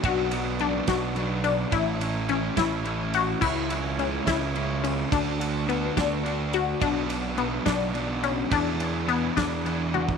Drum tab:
CC |------------|------------|x-----------|------------|
RD |x-x-x-x-x-x-|x-x-x-x-x-x-|--x-x-x-x-x-|x-x-x-x-x-x-|
SD |------o-----|------o-----|------o-----|------o-----|
T1 |------------|------------|------------|------------|
BD |o-----o-----|o-----o-----|o-----o-----|o-----o-----|

CC |------------|------------|
RD |x-x-x-x-x-x-|x-x-x-x-x---|
SD |------o-----|------o-----|
T1 |------------|----------o-|
BD |o-----o-----|o-----o----o|